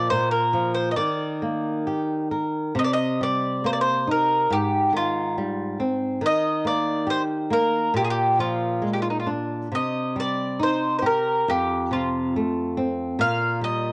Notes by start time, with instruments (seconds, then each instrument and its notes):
0.10 nylon-string guitar A#2, mandolin C5
0.31 mandolin A#4
0.53 nylon-string guitar F3
0.74 mandolin C5
0.91 mandolin D#5
0.96 nylon-string guitar D#3, mandolin D5
1.42 nylon-string guitar A#3
1.87 nylon-string guitar G4
2.31 nylon-string guitar A#4
2.75 nylon-string guitar C3
2.79 mandolin D#5
2.84 mandolin D5
2.93 mandolin D#5
3.21 nylon-string guitar G3, mandolin D5
3.64 nylon-string guitar A#3, mandolin C5
3.73 mandolin D5
3.81 mandolin C5
4.07 nylon-string guitar D#4
4.11 mandolin A#4
4.50 nylon-string guitar G#2, mandolin G4
4.93 nylon-string guitar D#3, mandolin F4
5.38 nylon-string guitar G3
5.80 nylon-string guitar C4
6.21 nylon-string guitar D#3
6.26 mandolin D#5
6.65 nylon-string guitar A#3, mandolin D5
7.07 nylon-string guitar G4, mandolin C5
7.50 nylon-string guitar A#3, mandolin A#4
7.94 nylon-string guitar A#2, mandolin G4
8.05 mandolin G#4
8.10 mandolin G4
8.39 nylon-string guitar F3, mandolin F4
8.82 nylon-string guitar G#3
8.93 mandolin G4
9.02 mandolin F4
9.10 mandolin D#4
9.20 mandolin F4
9.27 nylon-string guitar D4
9.72 nylon-string guitar C3, mandolin D#5
10.16 nylon-string guitar G3
10.20 mandolin D5
10.59 nylon-string guitar D#4, mandolin C5
10.99 nylon-string guitar G4, mandolin C5
11.06 mandolin A#4
11.48 nylon-string guitar F2, mandolin G4
11.91 nylon-string guitar C3, mandolin F4
12.36 nylon-string guitar A3
12.77 nylon-string guitar C4
13.19 nylon-string guitar A#2, mandolin F5
13.61 nylon-string guitar G3, mandolin D#5